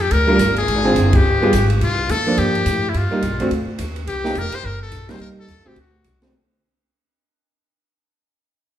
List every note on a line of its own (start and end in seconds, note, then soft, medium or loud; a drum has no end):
0.00 0.10 F2 medium
0.00 0.13 G4 medium
0.11 0.39 D2 medium
0.11 0.57 A#4 medium
0.11 kick soft
0.11 ride medium
0.27 0.38 G3 medium
0.27 0.38 D4 medium
0.27 0.38 F4 medium
0.27 0.38 A#4 medium
0.39 0.67 G1 medium
0.39 kick soft
0.39 hi-hat pedal medium
0.39 ride medium
0.56 1.17 G#4 medium
0.56 ride soft
0.68 0.95 G#1 medium
0.68 kick soft
0.68 ride medium
0.84 1.22 D3 medium
0.84 1.22 C4 medium
0.84 1.22 F4 medium
0.84 1.22 G#4 medium
0.96 1.23 F#1 medium
0.96 kick soft
0.96 hi-hat pedal soft
0.96 ride medium
1.13 1.71 G4 medium
1.13 kick medium
1.13 ride medium
1.24 1.40 G1 medium
1.41 1.52 G3 medium
1.41 1.52 B3 medium
1.41 1.52 F4 medium
1.41 1.52 G#4 medium
1.41 muted upright bass stroke soft
1.53 1.80 G#1 medium
1.53 kick soft
1.53 hi-hat pedal medium
1.53 ride medium
1.70 ride soft
1.81 2.08 C2 medium
1.81 2.12 F4 medium
1.81 kick soft
1.81 ride medium
2.09 2.36 D#2 medium
2.09 2.40 A4 medium
2.09 kick soft
2.09 hi-hat pedal medium
2.09 ride medium
2.27 2.63 F3 medium
2.27 2.64 A#3 medium
2.27 2.64 D4 medium
2.38 2.65 G2 medium
2.38 2.91 G4 medium
2.38 kick soft
2.38 ride medium
2.55 ride soft
2.66 2.93 A2 medium
2.66 kick soft
2.66 hi-hat pedal medium
2.66 ride medium
2.89 2.98 E4 medium
2.94 3.21 G2 medium
2.94 3.52 F4 medium
2.94 kick soft
2.94 ride medium
3.11 3.21 G3 medium
3.11 3.21 A#3 medium
3.11 3.22 D#4 medium
3.22 3.31 C2 medium
3.22 kick soft
3.22 hi-hat pedal soft
3.22 ride medium
3.31 3.39 A#1 medium
3.40 3.49 G1 medium
3.40 3.50 D3 medium
3.40 3.50 A3 medium
3.40 3.50 C4 medium
3.40 3.50 F#4 medium
3.40 ride soft
3.51 3.66 D2 medium
3.51 kick soft
3.51 ride medium
3.66 muted upright bass stroke soft
3.79 4.06 D#2 medium
3.79 kick soft
3.79 hi-hat pedal medium
3.79 ride medium
3.96 ride soft
4.07 4.34 C2 medium
4.07 4.40 G4 medium
4.07 kick soft
4.07 ride medium
4.24 4.34 A#3 medium
4.24 4.34 D#4 medium
4.24 4.35 G4 medium
4.24 snare soft
4.35 4.51 F1 medium
4.35 4.56 A#4 loud
4.35 kick soft
4.35 hi-hat pedal medium
4.35 ride medium
4.52 4.67 C5 loud
4.52 muted upright bass stroke soft
4.52 ride medium
4.63 4.91 G1 medium
4.63 4.81 A#4 medium
4.63 kick soft
4.82 5.13 A4 medium
4.91 5.19 A#1 medium
4.91 kick soft
4.91 hi-hat pedal medium
4.91 ride medium
5.09 5.46 G3 medium
5.09 5.46 A#3 medium
5.09 5.47 D#4 medium
5.09 5.21 C5 medium
5.09 snare medium
5.09 ride soft
5.20 5.35 C2 medium
5.20 5.29 A#4 medium
5.20 kick soft
5.20 ride soft
5.36 5.69 A4 loud
5.36 muted upright bass stroke soft
5.48 5.57 D#2 medium
5.48 kick soft
5.48 hi-hat pedal soft
5.48 ride medium
5.57 5.65 C2 soft
5.65 5.75 A#1 medium
5.65 5.75 D3 medium
5.65 5.76 A3 medium
5.65 5.76 C4 medium
5.65 5.76 F#4 medium
5.65 5.77 G4 medium
5.76 6.04 D2 medium
5.76 kick soft
5.76 ride medium
5.80 6.21 F#4 medium
6.04 6.32 C2 medium
6.04 kick soft
6.04 hi-hat pedal soft
6.04 ride medium
6.22 6.32 D3 medium
6.22 6.32 A3 medium
6.22 6.32 C4 medium
6.22 6.33 F#4 medium
6.22 snare medium
6.22 ride soft